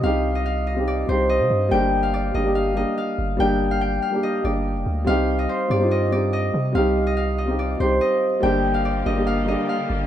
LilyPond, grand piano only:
\new Staff \with { instrumentName = "Grand piano" } { \time 4/4 \key g \minor \tempo 4 = 143 <g c' ees' g'>4~ <g c' ees' g'>16 r8 <g c' ees' g'>8 r16 <g c' ees' g'>4 r8 | <g bes d' g'>4 r8 <g bes d' g'>16 <g bes d' g'>8 r16 <g bes d' g'>4 r8 | <g bes d' g'>4~ <g bes d' g'>16 r8 <g bes d' g'>8 r16 <g bes d' g'>4 r8 | <g c' ees' g'>4 r8 <g c' ees' g'>16 <g c' ees' f'>8 r16 <g c' ees' g'>4 r8 |
<g c' ees' g'>4~ <g c' ees' g'>16 r8 <g c' ees' g'>8 r16 <g c' ees' g'>4 r8 | <g bes d' g'>4 r8 <g bes d' g'>16 <g bes d' g'>8 r16 <g bes d' g'>4 r8 | }